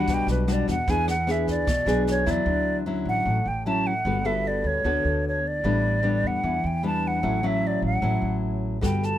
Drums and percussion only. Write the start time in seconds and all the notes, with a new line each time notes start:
0.08 kick, snare
0.28 snare
0.48 cross-stick, snare
0.68 kick, snare
0.88 kick, snare
1.08 cross-stick, snare
1.28 snare
1.47 kick, snare
1.67 kick, cross-stick, snare
1.88 snare
2.07 snare
2.27 kick, snare
8.83 kick, cross-stick, snare
9.03 snare